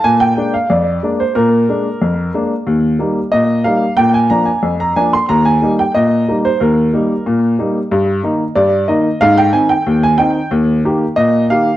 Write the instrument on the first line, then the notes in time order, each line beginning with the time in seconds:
upright piano
0.04 A#2 G#5
0.20 G5
0.37 G#3 A#3 D4
0.54 F5
0.70 F2 D5
1.03 G#3 A#3 D4
1.20 C5
1.35 A#2 A#4
1.69 G#3 A#3 D4
2.02 F2
2.34 G#3 A#3 D4
2.67 D#2
2.99 G3 A#3 D#4
3.32 A#2 D#5
3.64 G3 A#3 D#4 F5
3.97 A#2 G5
4.14 G#5
4.30 F3 A#3 D4 A#5
4.45 G#5
4.63 F2
4.80 A#5
4.96 F3 A#3 D4 G#5
5.13 C6
5.29 D#2 A#5
5.45 G#5
5.62 G3 A#3 D#4
5.79 G5
5.95 A#2 D#5
6.28 G3 A#3 D#4
6.45 C5
6.60 D#2 A#4
6.93 G3 A#3 D#4
7.26 A#2
7.59 G3 A#3 D#4
7.91 G2
8.23 D#3 A#3 D#4
8.55 G2 D5
8.88 D#3 A#3 D#4 D#5
9.21 G#2 F5
9.38 G5
9.53 D#3 C4 D#4 G#5
9.69 G5
9.87 D#2
10.03 G#5
10.18 D#3 C4 D#4 G5
10.51 D#2
10.84 D#3 A#3 G4
11.16 A#2 D#5
11.50 D#3 A#3 G4 F5